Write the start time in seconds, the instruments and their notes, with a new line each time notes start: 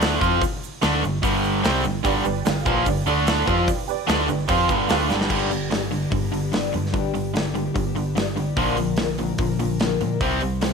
Already playing: fingered electric bass D2, overdriven electric guitar D3 A3 D4
0.01 snare, open hi-hat, shaker
0.20 fingered electric bass F2, overdriven electric guitar F3 C4 F4, kick, shaker
0.41 kick, open hi-hat, shaker
0.64 shaker
0.82 fingered electric bass D2, overdriven electric guitar D3 A3 D4, snare, open hi-hat, shaker
0.93 shaker
1.03 fingered electric bass G1, overdriven electric guitar G2 D3, shaker
1.23 fingered electric bass G1, overdriven electric guitar G2 D3 G3, kick, open hi-hat, shaker
1.44 shaker
1.63 fingered electric bass C2, overdriven electric guitar C3 G3 C4, snare, open hi-hat, shaker
1.84 fingered electric bass G1, overdriven electric guitar G2 D3, shaker
2.04 fingered electric bass G1, overdriven electric guitar G2 D3 G3, honky-tonk piano G4 B4 D5, kick, open hi-hat, shaker
2.24 fingered electric bass G1, overdriven electric guitar G2 D3, honky-tonk piano G4 B4 D5, shaker
2.35 shaker
2.44 overdriven electric guitar G2 D3, honky-tonk piano G4 B4 F5, snare, open hi-hat, shaker
2.65 fingered electric bass A#1, overdriven electric guitar A#2 F3 A#3, honky-tonk piano G4 B4 D5, kick, shaker
2.86 fingered electric bass G1, overdriven electric guitar G2 D3, honky-tonk piano G4 B4 D5, kick, open hi-hat, shaker
2.96 shaker
3.06 fingered electric bass D2, overdriven electric guitar D3 A3 D4, honky-tonk piano D4 A4 D5, shaker
3.27 snare, open hi-hat, shaker
3.46 fingered electric bass F2, overdriven electric guitar F3 C4 F4, honky-tonk piano G4 B4 D5, kick, shaker
3.68 kick, open hi-hat, shaker
3.88 honky-tonk piano G4 B4 D5, shaker
3.99 shaker
4.07 fingered electric bass D2, overdriven electric guitar D3 A3 D4, honky-tonk piano G4 B4 D5, snare, open hi-hat, shaker
4.20 shaker
4.28 fingered electric bass G1, overdriven electric guitar G2 D3, honky-tonk piano G4 B4 D5, shaker
4.38 shaker
4.48 fingered electric bass F2, overdriven electric guitar F3 C4 F4, honky-tonk piano G4 B4 D5, kick, open hi-hat, shaker
4.68 fingered electric bass G1, overdriven electric guitar G2 D3 G3, honky-tonk piano G4 B4 F5, kick, shaker
4.89 fingered electric bass D2, overdriven electric guitar D3 A3 D4, honky-tonk piano G4 B4 F5, snare, open hi-hat, shaker
5.00 shaker
5.09 fingered electric bass G1, overdriven electric guitar G2 D3 G3, honky-tonk piano G4 B4 D5, snare, shaker
5.20 snare, shaker
5.30 fingered electric bass G1, overdriven electric guitar G2 D3 G3, twelve-string acoustic guitar G2 D3 G3 B3 D4 G4, kick, crash
5.50 overdriven electric guitar G2 D3, twelve-string acoustic guitar G3 B3 D4 G4, open hi-hat
5.71 twelve-string acoustic guitar G2 D3 G3 B3 D4 G4, overdriven electric guitar G2 D3, snare, open hi-hat
5.82 twelve-string acoustic guitar G3 B3 D4 G4
5.91 overdriven electric guitar G2 D3, twelve-string acoustic guitar G3 B3 D4 G4, open hi-hat
6.02 twelve-string acoustic guitar G3 B3 D4 G4
6.11 overdriven electric guitar G2 D3, fingered electric bass G2, kick, open hi-hat
6.21 twelve-string acoustic guitar G3 B3 D4 G4
6.32 fingered electric bass G1, overdriven electric guitar G2 D3, twelve-string acoustic guitar G3 B3 D4 G4, open hi-hat
6.42 twelve-string acoustic guitar G3 B3 D4 G4
6.52 overdriven electric guitar G2 D3, twelve-string acoustic guitar G2 D3 G3 B3 D4 G4, snare, open hi-hat
6.72 overdriven electric guitar G2 D3, fingered electric bass G2, twelve-string acoustic guitar G3 B3 D4 G4, open hi-hat
6.86 snare
6.93 fingered electric bass G1, overdriven electric guitar G2 D3, twelve-string acoustic guitar G2 D3 G3 B3 D4 G4, kick, open hi-hat
7.14 overdriven electric guitar G2 D3, twelve-string acoustic guitar G3 B3 D4, open hi-hat
7.34 overdriven electric guitar G2 D3, twelve-string acoustic guitar G2 D3 G3 B3 D4 G4, snare, open hi-hat
7.45 twelve-string acoustic guitar G3 B3 D4 G4
7.54 overdriven electric guitar G2 D3, twelve-string acoustic guitar G3 B3 D4 G4, open hi-hat
7.65 twelve-string acoustic guitar G3 B3 D4 G4
7.74 fingered electric bass G1, overdriven electric guitar G2 D3, kick, open hi-hat
7.86 twelve-string acoustic guitar G3 B3 D4 G4
7.95 overdriven electric guitar G2 D3, twelve-string acoustic guitar G3 B3 D4 G4, open hi-hat
8.06 twelve-string acoustic guitar G3 B3 D4 G4
8.15 overdriven electric guitar G2 D3, twelve-string acoustic guitar G2 D3 G3 B3 D4 G4, snare, open hi-hat
8.26 twelve-string acoustic guitar G3 B3 D4 G4
8.36 overdriven electric guitar G2 D3, twelve-string acoustic guitar G3 B3 D4 G4, open hi-hat
8.57 fingered electric bass A#1, overdriven electric guitar A#2 D3 F3 A#3, twelve-string acoustic guitar A#2 D3 F3 A#3 D4 A#4, kick, open hi-hat
8.76 overdriven electric guitar A#2 D3 F3, twelve-string acoustic guitar F3 A#3 D4 A#4, open hi-hat
8.96 twelve-string acoustic guitar A#2 D3 F3 A#3 D4 A#4, overdriven electric guitar A#2 D3 F3, snare, open hi-hat
9.08 twelve-string acoustic guitar F3 A#3 D4 A#4
9.18 overdriven electric guitar A#2 D3 F3, twelve-string acoustic guitar F3 A#3 D4 A#4, open hi-hat
9.29 twelve-string acoustic guitar F3 A#3 D4 A#4
9.38 fingered electric bass A#2, overdriven electric guitar A#2 D3 F3, kick, open hi-hat
9.49 twelve-string acoustic guitar F3 A#3 D4 A#4
9.58 fingered electric bass A#1, overdriven electric guitar A#2 D3 F3, twelve-string acoustic guitar F3 A#3 D4 A#4, open hi-hat
9.69 twelve-string acoustic guitar F3 A#3 D4 A#4
9.79 twelve-string acoustic guitar A#2 D3 F3 A#3 D4 A#4, overdriven electric guitar A#2 D3 F3, snare, open hi-hat
9.99 fingered electric bass A#2, overdriven electric guitar A#2 D3 F3, twelve-string acoustic guitar F3 A#3 D4 A#4, open hi-hat
10.20 fingered electric bass C2, twelve-string acoustic guitar C3 G3 C4 E4 C5, overdriven electric guitar C3 G3 C4, kick, open hi-hat
10.41 overdriven electric guitar C3 G3, twelve-string acoustic guitar G3 C4 E4 C5, open hi-hat
10.61 twelve-string acoustic guitar C3 G3 C4 E4 C5, overdriven electric guitar C3 G3, snare, open hi-hat